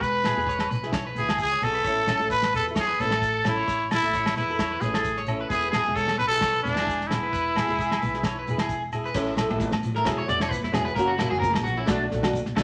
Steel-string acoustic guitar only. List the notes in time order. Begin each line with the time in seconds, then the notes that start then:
0.25 B3 E4 G#4
0.37 G#4
0.83 E4 G#4
1.17 B3 E4 G#4
1.29 E4 G#4
1.63 B3 E4 G#4
1.87 C#4 E4 A4
2.06 C#4 E4 A4
2.20 E4 A4
2.67 E4 A4
3.00 C#4 E4 A4
3.11 E4 A4
3.44 C#4 E4 A4
3.93 E4 A4
4.03 E4, muted steel-string acoustic guitar stroke
4.50 E4 A4
4.83 C#4 E4
4.88 A4
4.95 E4 A4
5.27 C#4 E4
5.32 A4
5.51 B3 E4 G#4
5.74 B3 E4 G#4
5.85 E4 G#4
6.31 E4 G#4
6.65 B3 E4
6.70 G#4
6.77 E4 G#4
7.12 B3 E4 G#4
7.55 B3 E4 G#4
7.68 E4 G#4
8.15 E4 G#4
8.47 E4 G#4, muted steel-string acoustic guitar stroke
8.59 E4 G#4
8.94 E4 G#4
9.15 C#4 E4 A4
9.37 E4 A4, muted steel-string acoustic guitar stroke
9.50 E4 A4
9.94 E4 A4
10.05 F#3 B3 E4 G#4
10.26 F#3 B3 E4 G#4
10.38 B3 E4, muted steel-string acoustic guitar stroke
10.72 F#3 B3 E4 G#4
10.97 A#3 C#4 F#4
11.16 A#3 C#4
11.20 F#4
11.30 C#4 F#4
11.79 C#4
11.86 A3 D4 F#4
12.10 A3 D4
12.14 F#4
12.23 D4 F#4
12.56 A3 D4 F#4